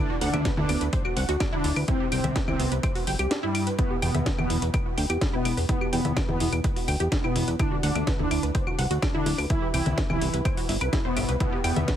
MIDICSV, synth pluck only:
0, 0, Header, 1, 2, 480
1, 0, Start_track
1, 0, Key_signature, 1, "minor"
1, 0, Tempo, 476190
1, 1896, Time_signature, 4, 2, 24, 8
1, 12060, End_track
2, 0, Start_track
2, 0, Title_t, "Synth pluck"
2, 0, Program_c, 0, 84
2, 99, Note_on_c, 0, 66, 75
2, 168, Note_off_c, 0, 66, 0
2, 217, Note_on_c, 0, 78, 100
2, 324, Note_off_c, 0, 78, 0
2, 338, Note_on_c, 0, 76, 79
2, 408, Note_off_c, 0, 76, 0
2, 456, Note_on_c, 0, 71, 84
2, 528, Note_off_c, 0, 71, 0
2, 578, Note_on_c, 0, 64, 75
2, 682, Note_off_c, 0, 64, 0
2, 696, Note_on_c, 0, 59, 76
2, 804, Note_off_c, 0, 59, 0
2, 819, Note_on_c, 0, 71, 78
2, 860, Note_off_c, 0, 71, 0
2, 936, Note_on_c, 0, 72, 82
2, 979, Note_off_c, 0, 72, 0
2, 1058, Note_on_c, 0, 66, 79
2, 1162, Note_off_c, 0, 66, 0
2, 1175, Note_on_c, 0, 78, 100
2, 1284, Note_off_c, 0, 78, 0
2, 1297, Note_on_c, 0, 66, 102
2, 1402, Note_off_c, 0, 66, 0
2, 1415, Note_on_c, 0, 62, 83
2, 1459, Note_off_c, 0, 62, 0
2, 1538, Note_on_c, 0, 64, 105
2, 1607, Note_off_c, 0, 64, 0
2, 1656, Note_on_c, 0, 64, 78
2, 1699, Note_off_c, 0, 64, 0
2, 1779, Note_on_c, 0, 71, 77
2, 1848, Note_off_c, 0, 71, 0
2, 1896, Note_on_c, 0, 64, 83
2, 1968, Note_off_c, 0, 64, 0
2, 2018, Note_on_c, 0, 67, 76
2, 2087, Note_off_c, 0, 67, 0
2, 2136, Note_on_c, 0, 79, 103
2, 2244, Note_off_c, 0, 79, 0
2, 2259, Note_on_c, 0, 76, 79
2, 2328, Note_off_c, 0, 76, 0
2, 2375, Note_on_c, 0, 71, 84
2, 2448, Note_off_c, 0, 71, 0
2, 2498, Note_on_c, 0, 64, 77
2, 2602, Note_off_c, 0, 64, 0
2, 2616, Note_on_c, 0, 59, 79
2, 2724, Note_off_c, 0, 59, 0
2, 2739, Note_on_c, 0, 71, 79
2, 2780, Note_off_c, 0, 71, 0
2, 2856, Note_on_c, 0, 72, 84
2, 2899, Note_off_c, 0, 72, 0
2, 2978, Note_on_c, 0, 66, 79
2, 3082, Note_off_c, 0, 66, 0
2, 3096, Note_on_c, 0, 79, 97
2, 3204, Note_off_c, 0, 79, 0
2, 3218, Note_on_c, 0, 67, 104
2, 3322, Note_off_c, 0, 67, 0
2, 3335, Note_on_c, 0, 62, 85
2, 3379, Note_off_c, 0, 62, 0
2, 3458, Note_on_c, 0, 64, 108
2, 3527, Note_off_c, 0, 64, 0
2, 3576, Note_on_c, 0, 64, 79
2, 3619, Note_off_c, 0, 64, 0
2, 3698, Note_on_c, 0, 71, 76
2, 3767, Note_off_c, 0, 71, 0
2, 3815, Note_on_c, 0, 64, 82
2, 3888, Note_off_c, 0, 64, 0
2, 3937, Note_on_c, 0, 67, 77
2, 4007, Note_off_c, 0, 67, 0
2, 4055, Note_on_c, 0, 79, 100
2, 4164, Note_off_c, 0, 79, 0
2, 4178, Note_on_c, 0, 76, 79
2, 4247, Note_off_c, 0, 76, 0
2, 4294, Note_on_c, 0, 71, 85
2, 4367, Note_off_c, 0, 71, 0
2, 4417, Note_on_c, 0, 64, 78
2, 4521, Note_off_c, 0, 64, 0
2, 4534, Note_on_c, 0, 64, 76
2, 4578, Note_off_c, 0, 64, 0
2, 4658, Note_on_c, 0, 71, 76
2, 4699, Note_off_c, 0, 71, 0
2, 4775, Note_on_c, 0, 71, 87
2, 4819, Note_off_c, 0, 71, 0
2, 4898, Note_on_c, 0, 66, 75
2, 5002, Note_off_c, 0, 66, 0
2, 5015, Note_on_c, 0, 79, 99
2, 5124, Note_off_c, 0, 79, 0
2, 5138, Note_on_c, 0, 67, 104
2, 5242, Note_off_c, 0, 67, 0
2, 5255, Note_on_c, 0, 62, 83
2, 5299, Note_off_c, 0, 62, 0
2, 5377, Note_on_c, 0, 64, 108
2, 5447, Note_off_c, 0, 64, 0
2, 5495, Note_on_c, 0, 64, 77
2, 5539, Note_off_c, 0, 64, 0
2, 5617, Note_on_c, 0, 71, 77
2, 5687, Note_off_c, 0, 71, 0
2, 5734, Note_on_c, 0, 64, 81
2, 5807, Note_off_c, 0, 64, 0
2, 5857, Note_on_c, 0, 67, 77
2, 5927, Note_off_c, 0, 67, 0
2, 5974, Note_on_c, 0, 79, 104
2, 6083, Note_off_c, 0, 79, 0
2, 6097, Note_on_c, 0, 76, 80
2, 6167, Note_off_c, 0, 76, 0
2, 6214, Note_on_c, 0, 71, 85
2, 6287, Note_off_c, 0, 71, 0
2, 6337, Note_on_c, 0, 64, 75
2, 6441, Note_off_c, 0, 64, 0
2, 6454, Note_on_c, 0, 64, 78
2, 6498, Note_off_c, 0, 64, 0
2, 6577, Note_on_c, 0, 71, 79
2, 6619, Note_off_c, 0, 71, 0
2, 6694, Note_on_c, 0, 71, 87
2, 6738, Note_off_c, 0, 71, 0
2, 6817, Note_on_c, 0, 66, 76
2, 6921, Note_off_c, 0, 66, 0
2, 6934, Note_on_c, 0, 79, 98
2, 7043, Note_off_c, 0, 79, 0
2, 7057, Note_on_c, 0, 67, 105
2, 7161, Note_off_c, 0, 67, 0
2, 7175, Note_on_c, 0, 62, 83
2, 7219, Note_off_c, 0, 62, 0
2, 7298, Note_on_c, 0, 64, 105
2, 7368, Note_off_c, 0, 64, 0
2, 7416, Note_on_c, 0, 64, 78
2, 7459, Note_off_c, 0, 64, 0
2, 7538, Note_on_c, 0, 71, 75
2, 7607, Note_off_c, 0, 71, 0
2, 7656, Note_on_c, 0, 64, 83
2, 7728, Note_off_c, 0, 64, 0
2, 7778, Note_on_c, 0, 66, 75
2, 7847, Note_off_c, 0, 66, 0
2, 7895, Note_on_c, 0, 78, 107
2, 8004, Note_off_c, 0, 78, 0
2, 8017, Note_on_c, 0, 76, 77
2, 8087, Note_off_c, 0, 76, 0
2, 8135, Note_on_c, 0, 71, 87
2, 8208, Note_off_c, 0, 71, 0
2, 8258, Note_on_c, 0, 64, 77
2, 8362, Note_off_c, 0, 64, 0
2, 8375, Note_on_c, 0, 64, 77
2, 8419, Note_off_c, 0, 64, 0
2, 8498, Note_on_c, 0, 71, 77
2, 8540, Note_off_c, 0, 71, 0
2, 8615, Note_on_c, 0, 72, 84
2, 8659, Note_off_c, 0, 72, 0
2, 8739, Note_on_c, 0, 66, 78
2, 8842, Note_off_c, 0, 66, 0
2, 8855, Note_on_c, 0, 78, 101
2, 8964, Note_off_c, 0, 78, 0
2, 8978, Note_on_c, 0, 66, 102
2, 9082, Note_off_c, 0, 66, 0
2, 9095, Note_on_c, 0, 62, 85
2, 9139, Note_off_c, 0, 62, 0
2, 9218, Note_on_c, 0, 64, 107
2, 9287, Note_off_c, 0, 64, 0
2, 9336, Note_on_c, 0, 64, 77
2, 9379, Note_off_c, 0, 64, 0
2, 9458, Note_on_c, 0, 71, 78
2, 9527, Note_off_c, 0, 71, 0
2, 9576, Note_on_c, 0, 64, 83
2, 9648, Note_off_c, 0, 64, 0
2, 9699, Note_on_c, 0, 67, 77
2, 9768, Note_off_c, 0, 67, 0
2, 9816, Note_on_c, 0, 79, 104
2, 9924, Note_off_c, 0, 79, 0
2, 9938, Note_on_c, 0, 76, 78
2, 10007, Note_off_c, 0, 76, 0
2, 10055, Note_on_c, 0, 71, 83
2, 10127, Note_off_c, 0, 71, 0
2, 10177, Note_on_c, 0, 64, 77
2, 10281, Note_off_c, 0, 64, 0
2, 10294, Note_on_c, 0, 64, 77
2, 10338, Note_off_c, 0, 64, 0
2, 10417, Note_on_c, 0, 71, 80
2, 10459, Note_off_c, 0, 71, 0
2, 10534, Note_on_c, 0, 72, 86
2, 10578, Note_off_c, 0, 72, 0
2, 10658, Note_on_c, 0, 66, 77
2, 10762, Note_off_c, 0, 66, 0
2, 10775, Note_on_c, 0, 64, 77
2, 10884, Note_off_c, 0, 64, 0
2, 10897, Note_on_c, 0, 71, 101
2, 10939, Note_off_c, 0, 71, 0
2, 11014, Note_on_c, 0, 64, 101
2, 11123, Note_off_c, 0, 64, 0
2, 11138, Note_on_c, 0, 72, 79
2, 11242, Note_off_c, 0, 72, 0
2, 11254, Note_on_c, 0, 76, 76
2, 11327, Note_off_c, 0, 76, 0
2, 11377, Note_on_c, 0, 71, 76
2, 11419, Note_off_c, 0, 71, 0
2, 11495, Note_on_c, 0, 64, 80
2, 11567, Note_off_c, 0, 64, 0
2, 11618, Note_on_c, 0, 67, 77
2, 11687, Note_off_c, 0, 67, 0
2, 11734, Note_on_c, 0, 79, 102
2, 11843, Note_off_c, 0, 79, 0
2, 11858, Note_on_c, 0, 76, 81
2, 11927, Note_off_c, 0, 76, 0
2, 11975, Note_on_c, 0, 71, 83
2, 12048, Note_off_c, 0, 71, 0
2, 12060, End_track
0, 0, End_of_file